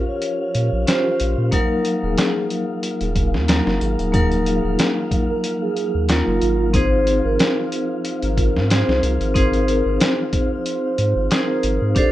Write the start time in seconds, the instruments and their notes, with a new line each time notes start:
Already playing: synth texture F3 F5, vibraphone C#4 F4 G4 A#4 C5
0.08 soft synth lead C#5
0.22 closed hi-hat
0.40 soft synth lead C#5
0.55 sub bass A#2, closed hi-hat
0.73 sub bass A#1
0.87 vibraphone C#4 F4 G4 C5, soft synth lead C5, snare, closed hi-hat
1.20 sub bass A#1, closed hi-hat
1.38 sub bass A#2
1.51 vibraphone F#3 A#3 D#4 A#4, soft synth lead A#4, kick, closed hi-hat
1.85 closed hi-hat
2.03 sub bass D#1, soft synth lead G#4
2.18 snare, closed hi-hat
2.50 closed hi-hat
2.83 closed hi-hat
3.01 sub bass D#1, soft synth lead G#4, closed hi-hat
3.16 kick, closed hi-hat
3.34 sub bass D#2, snare
3.48 vibraphone F#3 A#3 D#4 A#4, soft synth lead A#4, snare, closed hi-hat
3.67 sub bass F#1, snare
3.81 sub bass G#1, soft synth lead G#4, closed hi-hat
3.99 sub bass D#1, closed hi-hat
4.12 vibraphone F#3 A#3 D#4 A#4, kick, closed hi-hat
4.32 closed hi-hat
4.46 soft synth lead G#4, closed hi-hat
4.64 sub bass D#1
4.79 snare, closed hi-hat
5.11 kick, closed hi-hat
5.29 soft synth lead A#4
5.44 closed hi-hat
5.62 soft synth lead G#4
5.77 closed hi-hat
5.95 sub bass D#2
6.09 vibraphone F#3 A#3 D#4 A#4, soft synth lead F4, snare, closed hi-hat
6.27 sub bass F#1
6.42 sub bass G#1, closed hi-hat
6.73 vibraphone C4 D#4 G#4 C5, soft synth lead C5, kick, closed hi-hat
7.07 closed hi-hat
7.25 sub bass G#1, soft synth lead A#4
7.39 snare, closed hi-hat
7.72 closed hi-hat
8.05 closed hi-hat
8.22 sub bass G#1, soft synth lead A#4, closed hi-hat
8.37 kick, closed hi-hat
8.55 sub bass G#2, snare
8.70 vibraphone C4 D#4 G#4 C5, soft synth lead C5, snare, closed hi-hat
8.88 sub bass C2, snare
9.03 sub bass C2, soft synth lead A#4, closed hi-hat
9.20 sub bass G#1, closed hi-hat
9.34 vibraphone C4 D#4 G#4 C5, kick, closed hi-hat
9.53 closed hi-hat
9.68 soft synth lead A#4, closed hi-hat
9.86 sub bass G#1
10.00 snare, closed hi-hat
10.33 kick, closed hi-hat
10.51 soft synth lead C5
10.66 closed hi-hat
10.84 soft synth lead C5
10.98 sub bass G#2, closed hi-hat
11.16 sub bass G#1
11.31 vibraphone C4 D#4 G#4 C5, soft synth lead A#4, snare, closed hi-hat
11.63 sub bass G#1, closed hi-hat
11.82 sub bass G#2
11.95 vibraphone D4 G4 A4 C5, soft synth lead D5, kick, closed hi-hat